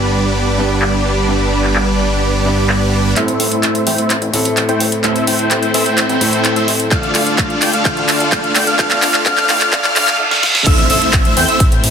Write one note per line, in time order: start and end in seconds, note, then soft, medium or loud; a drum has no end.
0.00 3.14 G1 medium
0.00 0.55 G2 medium
0.00 0.56 G3 medium
0.00 3.13 G3 medium
0.00 3.14 G3 medium
0.00 0.56 B3 medium
0.00 3.13 B3 medium
0.00 3.14 B3 medium
0.00 0.56 D4 medium
0.00 3.13 D4 medium
0.00 3.14 D4 medium
0.00 0.56 G4 medium
0.00 3.14 B4 medium
0.00 3.14 D5 medium
0.12 open hi-hat loud
0.57 1.26 G2 medium
0.57 1.26 G3 medium
0.57 1.26 B3 medium
0.57 1.26 D4 medium
0.57 1.27 G4 loud
0.57 open hi-hat medium
0.82 clap loud
1.06 open hi-hat loud
1.28 2.43 G2 medium
1.28 2.43 G3 medium
1.28 2.43 B3 medium
1.28 2.44 D4 medium
1.28 2.44 G4 medium
1.52 open hi-hat loud
1.64 clap soft
1.76 clap loud
1.99 open hi-hat loud
2.45 3.13 G2 medium
2.45 3.13 G3 medium
2.45 3.14 B3 medium
2.45 3.14 D4 medium
2.45 3.14 G4 loud
2.45 open hi-hat medium
2.69 clap loud
2.93 open hi-hat loud
3.15 3.32 A1 medium
3.15 4.30 A2 medium
3.15 4.31 A3 medium
3.15 3.36 A3 loud
3.15 6.88 A3 medium
3.15 4.31 C4 medium
3.15 3.36 C4 medium
3.15 6.88 C4 medium
3.15 3.36 E4 medium
3.15 6.88 E4 medium
3.15 4.31 E4 medium
3.15 4.31 A4 medium
3.15 3.36 C5 medium
3.15 3.36 E5 loud
3.15 3.36 E6 loud
3.15 clap soft
3.15 closed hi-hat medium
3.15 riser medium
3.28 closed hi-hat soft
3.40 3.48 A1 medium
3.40 3.84 A3 medium
3.40 3.84 C4 medium
3.40 3.84 E4 medium
3.40 3.84 C5 medium
3.40 3.84 E5 medium
3.40 3.84 E6 medium
3.40 open hi-hat loud
3.52 closed hi-hat medium
3.63 3.71 A1 medium
3.63 clap soft
3.63 closed hi-hat medium
3.75 closed hi-hat soft
3.87 3.95 E2 loud
3.87 3.97 A3 loud
3.87 3.97 C4 medium
3.87 3.97 E4 medium
3.87 3.97 C5 medium
3.87 3.97 G5 loud
3.87 3.97 G6 loud
3.87 open hi-hat loud
3.98 4.14 A3 medium
3.98 4.14 C4 medium
3.98 4.14 E4 medium
3.98 4.14 C5 medium
3.98 4.14 E5 loud
3.98 4.14 E6 loud
3.98 closed hi-hat medium
4.10 4.18 A1 medium
4.10 clap medium
4.10 closed hi-hat medium
4.22 4.30 A1 medium
4.22 closed hi-hat soft
4.32 4.49 A1 loud
4.32 5.01 A2 medium
4.32 5.01 A3 medium
4.32 5.01 C4 medium
4.32 5.01 E4 medium
4.32 5.02 A4 loud
4.32 open hi-hat loud
4.45 closed hi-hat medium
4.57 4.65 A1 loud
4.57 clap medium
4.57 closed hi-hat soft
4.69 4.84 A3 medium
4.69 4.84 C4 medium
4.69 4.84 E4 medium
4.69 4.84 C5 medium
4.69 4.84 G5 loud
4.69 4.84 G6 loud
4.69 closed hi-hat soft
4.80 4.88 A1 loud
4.80 open hi-hat loud
4.92 closed hi-hat medium
5.03 5.20 A1 medium
5.03 6.18 A2 medium
5.03 6.18 A3 medium
5.03 5.25 A3 medium
5.03 6.18 C4 medium
5.03 5.25 C4 medium
5.03 5.25 E4 medium
5.03 6.19 E4 medium
5.03 6.19 A4 medium
5.03 5.25 C5 medium
5.03 5.25 E5 medium
5.03 5.25 E6 medium
5.03 clap medium
5.03 closed hi-hat medium
5.16 closed hi-hat soft
5.27 5.35 A1 medium
5.27 5.71 A3 medium
5.27 5.71 C4 medium
5.27 5.71 E4 medium
5.27 5.71 C5 medium
5.27 5.71 G5 medium
5.27 5.71 G6 medium
5.27 open hi-hat loud
5.39 closed hi-hat soft
5.51 5.59 A1 medium
5.51 clap medium
5.51 closed hi-hat medium
5.63 closed hi-hat soft
5.74 5.82 E2 loud
5.74 5.84 A3 loud
5.74 5.84 C4 medium
5.74 5.84 E4 medium
5.74 5.84 C5 medium
5.74 5.84 E5 loud
5.74 5.84 E6 loud
5.74 open hi-hat loud
5.86 6.53 A3 medium
5.86 6.53 C4 medium
5.86 6.53 E4 medium
5.86 6.53 C5 medium
5.86 6.53 G5 loud
5.86 6.53 G6 medium
5.86 closed hi-hat medium
5.98 6.06 A1 medium
5.98 clap medium
5.98 closed hi-hat medium
6.09 6.17 A1 loud
6.09 closed hi-hat soft
6.20 6.37 A1 medium
6.20 6.88 A2 medium
6.20 6.88 A3 medium
6.20 6.89 C4 medium
6.20 6.89 E4 medium
6.20 6.89 A4 loud
6.20 open hi-hat loud
6.33 closed hi-hat medium
6.45 6.52 A1 loud
6.45 clap medium
6.45 closed hi-hat medium
6.56 6.72 A3 medium
6.56 6.72 C4 medium
6.56 6.72 E4 medium
6.56 6.72 C5 medium
6.56 6.72 E5 medium
6.56 6.72 E6 medium
6.56 closed hi-hat soft
6.68 6.76 A1 loud
6.68 open hi-hat loud
6.80 closed hi-hat medium
6.90 7.07 D2 loud
6.90 7.82 D3 medium
6.90 10.16 D3 medium
6.90 7.83 A3 medium
6.90 7.11 A3 medium
6.90 7.11 D4 medium
6.90 10.16 D4 medium
6.90 7.11 F4 medium
6.90 10.16 F4 medium
6.90 7.84 F4 medium
6.90 10.16 A4 medium
6.90 7.84 A4 medium
6.90 7.11 D5 medium
6.90 7.11 F5 loud
6.90 7.11 F6 loud
6.90 kick loud
6.90 clap medium
6.90 closed hi-hat medium
7.03 closed hi-hat soft
7.15 7.23 D2 medium
7.15 7.59 A3 medium
7.15 7.59 D4 medium
7.15 7.59 F4 medium
7.15 7.59 D5 medium
7.15 7.59 F5 medium
7.15 7.59 F6 medium
7.15 clap medium
7.15 open hi-hat loud
7.27 closed hi-hat soft
7.38 7.46 D2 medium
7.38 kick loud
7.38 clap medium
7.38 closed hi-hat medium
7.50 closed hi-hat soft
7.62 7.70 A1 loud
7.62 7.72 A3 medium
7.62 7.72 D4 medium
7.62 7.72 F4 medium
7.62 7.72 D5 medium
7.62 7.72 G5 loud
7.62 7.72 G6 loud
7.62 clap medium
7.62 open hi-hat loud
7.73 7.83 A3 medium
7.73 7.83 D4 medium
7.73 7.83 F4 medium
7.73 7.83 D5 medium
7.73 7.83 F5 medium
7.73 7.83 F6 medium
7.73 closed hi-hat soft
7.84 7.93 D2 medium
7.84 8.76 D3 medium
7.84 8.77 A3 medium
7.84 8.05 A3 medium
7.84 8.77 D4 medium
7.84 8.05 F4 medium
7.84 8.77 F4 medium
7.84 8.78 A4 medium
7.84 8.05 F6 loud
7.84 kick loud
7.84 clap medium
7.84 closed hi-hat medium
7.97 8.05 D2 loud
7.97 closed hi-hat soft
8.09 8.24 D2 loud
8.09 8.53 A3 medium
8.09 8.53 D4 medium
8.09 8.53 F4 medium
8.09 8.53 D5 medium
8.09 8.53 F5 medium
8.09 8.53 F6 medium
8.09 clap medium
8.09 open hi-hat loud
8.20 closed hi-hat medium
8.32 8.40 D2 loud
8.32 kick loud
8.32 clap medium
8.32 closed hi-hat medium
8.44 closed hi-hat soft
8.55 8.63 D2 loud
8.55 8.65 A3 loud
8.55 8.65 D4 medium
8.55 8.65 F4 medium
8.55 8.65 D5 medium
8.55 8.65 G5 loud
8.55 8.65 G6 loud
8.55 clap medium
8.55 open hi-hat loud
8.67 8.77 A3 medium
8.67 8.77 D4 medium
8.67 8.77 F4 medium
8.67 8.77 D5 medium
8.67 8.77 F5 loud
8.67 8.77 F6 medium
8.67 closed hi-hat soft
8.78 8.95 D2 loud
8.78 9.23 D3 medium
8.78 9.24 A3 medium
8.78 8.99 A3 loud
8.78 9.24 D4 medium
8.78 8.99 D4 medium
8.78 8.99 F4 medium
8.78 9.24 F4 medium
8.78 9.25 A4 medium
8.78 8.99 D5 medium
8.78 8.99 F5 loud
8.78 8.99 F6 loud
8.78 kick loud
8.78 clap medium
8.78 closed hi-hat medium
8.91 clap medium
8.91 closed hi-hat soft
9.02 9.10 D2 medium
9.02 9.24 A3 medium
9.02 9.24 D4 medium
9.02 9.24 F4 medium
9.02 9.24 D5 medium
9.02 9.24 F5 medium
9.02 9.24 F6 medium
9.02 clap loud
9.02 open hi-hat loud
9.14 clap medium
9.14 closed hi-hat soft
9.25 9.34 D2 medium
9.25 9.70 D3 medium
9.25 9.71 A3 medium
9.25 9.46 A3 loud
9.25 9.71 D4 medium
9.25 9.46 D4 medium
9.25 9.46 F4 medium
9.25 9.71 F4 medium
9.25 9.71 A4 loud
9.25 9.46 D5 medium
9.25 9.46 F5 loud
9.25 9.46 F6 loud
9.25 kick loud
9.25 clap loud
9.25 closed hi-hat medium
9.38 clap medium
9.38 closed hi-hat soft
9.49 9.57 A1 loud
9.49 9.71 A3 medium
9.49 9.71 D4 medium
9.49 9.71 F4 medium
9.49 9.71 D5 medium
9.49 9.71 F5 medium
9.49 9.71 F6 medium
9.49 clap loud
9.49 open hi-hat loud
9.61 clap medium
9.61 closed hi-hat soft
9.71 9.81 D2 medium
9.71 9.93 D3 medium
9.71 9.94 A3 medium
9.71 9.93 A3 loud
9.71 9.94 D4 medium
9.71 9.93 D4 medium
9.71 9.93 F4 loud
9.71 9.95 F4 medium
9.71 9.95 A4 loud
9.71 9.93 D5 medium
9.71 9.93 F5 loud
9.71 9.93 F6 loud
9.71 kick loud
9.71 clap loud
9.71 closed hi-hat medium
9.71 reverse cymbal medium
9.84 9.92 D2 loud
9.84 clap medium
9.84 closed hi-hat soft
9.95 10.04 D2 medium
9.95 10.17 D3 medium
9.95 10.17 A3 medium
9.95 10.16 A3 loud
9.95 10.18 D4 medium
9.95 10.16 D4 loud
9.95 10.16 F4 medium
9.95 10.18 F4 medium
9.95 10.18 A4 medium
9.95 10.16 D5 medium
9.95 10.16 F5 loud
9.95 10.16 F6 loud
9.95 clap loud
9.95 open hi-hat loud
10.08 clap loud
10.08 closed hi-hat medium
10.18 10.40 D3 loud
10.18 10.41 A3 medium
10.18 10.41 D4 medium
10.18 10.41 F4 medium
10.18 10.42 A4 loud
10.31 snare medium
10.42 10.64 D3 medium
10.42 10.64 A3 medium
10.42 10.65 D4 medium
10.42 10.65 F4 medium
10.42 10.65 A4 medium
10.42 snare medium
10.55 snare medium
10.66 10.82 A1 loud
10.66 11.90 A3 medium
10.66 10.86 A3 loud
10.66 11.90 C4 medium
10.66 10.86 C4 loud
10.66 11.90 E4 medium
10.66 10.86 E4 loud
10.66 10.86 C5 medium
10.66 10.86 E5 loud
10.66 10.86 E6 loud
10.66 kick loud
10.66 closed hi-hat loud
10.66 ride medium
10.66 crash loud
10.66 impact medium
10.78 closed hi-hat soft
10.90 10.98 A1 medium
10.90 11.34 A3 medium
10.90 11.34 C4 medium
10.90 11.34 E4 medium
10.90 11.34 C5 medium
10.90 11.34 E5 medium
10.90 11.34 E6 medium
10.90 open hi-hat loud
11.02 closed hi-hat soft
11.13 11.21 A1 loud
11.13 kick loud
11.13 clap loud
11.13 closed hi-hat loud
11.13 ride medium
11.25 closed hi-hat soft
11.37 11.45 E2 loud
11.37 11.47 A3 loud
11.37 11.47 C4 medium
11.37 11.47 E4 medium
11.37 11.47 C5 medium
11.37 11.47 G5 loud
11.37 11.47 G6 loud
11.37 open hi-hat medium
11.48 11.64 A3 medium
11.48 11.64 C4 medium
11.48 11.64 E4 medium
11.48 11.64 C5 medium
11.48 11.64 E5 loud
11.48 11.64 E6 loud
11.48 closed hi-hat soft
11.60 11.68 A1 medium
11.60 kick loud
11.60 closed hi-hat loud
11.60 ride medium
11.72 11.80 A1 loud
11.72 closed hi-hat soft
11.84 11.90 A1 loud
11.84 open hi-hat loud